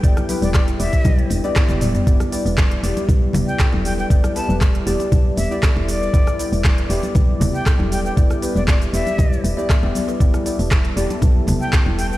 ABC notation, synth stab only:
X:1
M:4/4
L:1/16
Q:1/4=118
K:Em
V:1 name="Synth stab"
[B,EGd] z [B,EGB]4 [B,EGd]4- [B,EGd] [B,EGd] z [B,EGd]3 | [B,EGd]2 [B,EGd] z3 [B,EGd]8- [B,EGd]2 | [B,EGd] z [B,EGB]4 [B,EGd]4- [B,EGd] [B,EGd] z4 | [B,EGd]2 [B,EGd] z3 [B,EGd]8- [B,EGd]2 |
[B,EGd] z [B,EGB]4 [B,EGd]4- [B,EGd] [B,EGd] z [B,EGd]3 | [B,EGd]2 [B,EGd] z3 [B,EGd]8- [B,EGd]2 |]